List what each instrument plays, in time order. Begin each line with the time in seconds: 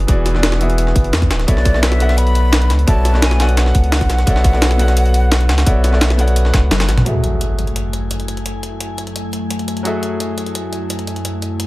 Already playing: grand piano E3 B3 F#4 G#4 D5 E5
0.07 sub bass E1, grand piano E3 B3 F#4 G#4 D5, kick, closed hi-hat
0.26 snare, closed hi-hat
0.34 grand piano E3 B3 F#4 G#4 D5, snare
0.43 snare, closed hi-hat
0.52 snare
0.59 grand piano E3 B3 F#4 G#4 E5, closed hi-hat
0.70 closed hi-hat
0.78 closed hi-hat
0.87 snare
0.96 sub bass F#1, kick, closed hi-hat
1.04 closed hi-hat
1.13 sub bass E2, snare, closed hi-hat
1.22 kick, snare, closed hi-hat
1.30 sub bass D1, snare, closed hi-hat
1.39 snare, closed hi-hat
1.47 sub bass B1, grand piano B3 F#4 A4 C#5 D5 E5, flute D5, kick, closed hi-hat
1.57 snare
1.65 kick, snare, closed hi-hat
1.73 grand piano B3 F#4 A4 C#5 D5 E5, snare
1.82 flute E5, snare, closed hi-hat
1.92 snare
1.98 grand piano B3 F#4 A4 C#5 D5 F#5, closed hi-hat
2.09 snare, closed hi-hat
2.17 flute B5, closed hi-hat
2.27 closed hi-hat
2.35 closed hi-hat
2.53 snare, closed hi-hat
2.62 closed hi-hat
2.70 sub bass C#2, snare, closed hi-hat
2.79 closed hi-hat
2.87 sub bass B1, grand piano B3 F#4 A4 C#5 D5 E5, flute A5, kick, closed hi-hat
3.05 snare, closed hi-hat
3.13 grand piano B3 F#4 A4 C#5 D5 E5, snare
3.22 flute G#5, snare, closed hi-hat
3.31 snare
3.38 grand piano B3 F#4 A4 C#5 D5 F#5, snare, closed hi-hat
3.49 closed hi-hat
3.57 flute F#5, snare, closed hi-hat
3.66 snare
3.75 sub bass C#2, kick, closed hi-hat
3.84 closed hi-hat
3.92 snare, closed hi-hat, open hi-hat
4.01 kick, snare, closed hi-hat
4.10 sub bass B1, snare, closed hi-hat
4.18 snare, closed hi-hat
4.26 sub bass B1, grand piano B3 F#4 A4 C#5 D5 E5, kick, closed hi-hat
4.36 snare
4.44 kick, snare, closed hi-hat
4.52 grand piano B3 F#4 A4 C#5 D5 E5, snare
4.62 snare, closed hi-hat
4.71 snare
4.77 grand piano B3 F#4 A4 C#5 D5 F#5, closed hi-hat
4.88 snare, closed hi-hat
4.97 closed hi-hat
5.06 closed hi-hat
5.14 closed hi-hat
5.32 snare, closed hi-hat
5.41 closed hi-hat
5.49 sub bass C#2, snare, closed hi-hat
5.58 snare, closed hi-hat
5.65 sub bass B1, grand piano B3 F#4 A4 C#5 D5 E5, kick, closed hi-hat
5.84 snare, closed hi-hat
5.92 grand piano B3 F#4 A4 C#5 D5 E5, snare
6.01 snare, closed hi-hat
6.10 snare
6.17 grand piano B3 F#4 A4 C#5 D5 F#5, closed hi-hat
6.27 closed hi-hat
6.36 closed hi-hat
6.45 snare
6.54 sub bass C#2, kick, snare, closed hi-hat
6.71 sub bass F#1, snare, closed hi-hat, high tom
6.80 snare, closed hi-hat
6.89 sub bass A1, snare, closed hi-hat
6.97 snare, closed hi-hat, mid tom
7.04 ambient pad F#2 A3 E4 G#5, grand piano F#3 F#4 G#4 A4 E5, closed hi-hat, impact
7.24 closed hi-hat
7.41 closed hi-hat
7.59 closed hi-hat
7.67 closed hi-hat
7.76 closed hi-hat
7.93 closed hi-hat
8.11 closed hi-hat
8.20 closed hi-hat
8.28 closed hi-hat
8.37 closed hi-hat
8.46 closed hi-hat
8.63 closed hi-hat
8.81 closed hi-hat
8.98 closed hi-hat
9.07 closed hi-hat
9.16 closed hi-hat
9.33 closed hi-hat
9.51 closed hi-hat
9.59 closed hi-hat
9.68 closed hi-hat
9.77 closed hi-hat
9.83 grand piano F#3 F#4 G#4 A4 E5, closed hi-hat
10.03 closed hi-hat
10.20 closed hi-hat
10.38 closed hi-hat
10.46 closed hi-hat
10.55 closed hi-hat
10.73 closed hi-hat
10.90 closed hi-hat
10.99 closed hi-hat
11.07 closed hi-hat
11.16 closed hi-hat
11.25 closed hi-hat
11.42 closed hi-hat
11.60 closed hi-hat